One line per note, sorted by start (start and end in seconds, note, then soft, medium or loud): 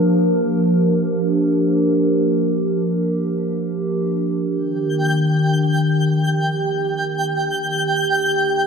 0.00 4.52 F3 medium
0.00 8.67 A#3 medium
0.00 8.67 D4 medium
0.00 8.67 G4 medium
0.00 8.67 A#4 medium
4.50 8.67 D#3 medium
4.50 8.67 G5 medium
4.50 8.67 G6 medium